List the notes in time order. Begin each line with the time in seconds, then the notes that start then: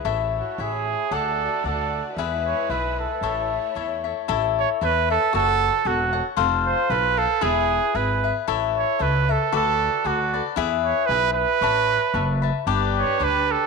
0.03 A1 A3 E4 A4 C#5 E5
0.37 F#4
0.58 A1 E4 G#4 C#5 E5
1.11 D2 D4 F#4 A4 D5 F#5
1.64 D2 D4 A4 D5 F#5
2.17 E2 G#3 E4 G#4 B4 E5
2.46 C#5
2.69 B1 E4 G#4 B4 E5
3.00 A4
3.21 A1 A3 E4 A4 C#5 E5
3.75 E2 E4 A4 C#5 E5
4.04 A4 C#5 E5
4.28 A1 E4 A4 C#5 E5
4.59 C#5
4.81 E2 E4 A4 B4 C#5 E5
5.10 A4 C#5 E5
5.33 F#1 F#4 A4 C#5 F#5
5.85 E1 F#4 A4 C#5 F#5
6.13 A4 C#5 F#5
6.37 F1 F4 A4 C5 F5
6.66 C5
6.90 B1 F4 A4 B4 C5 F5
7.17 A4 C5 F5
7.41 E1 E4 G#4 B4 E5
7.94 G#1 E4 G#4 B4 E5
8.24 G#4 B4 E5
8.47 A1 E4 A4 C#5 E5
8.77 C#5
8.99 C#2 E4 A4 B4 C#5 E5
9.29 A4 C#5 E5
9.52 D2 F#4 A4 B4 D5
10.04 D2 F#4 A4 B4 D5
10.33 A4 B4 D5
10.56 E2 E4 G#4 B4 E5
10.84 C#5
11.06 B1 E4 B4
11.11 G#4 B4 E5
11.33 B4
11.61 A1 C#5 E5 A5 B5
12.14 F#1 C#5 E5 A5 B5
12.42 E5 A5 B5
12.67 G1 G3 D4 G4 B4 D5
12.98 C#5
13.20 D2 D4 G4 B4 D5
13.51 A4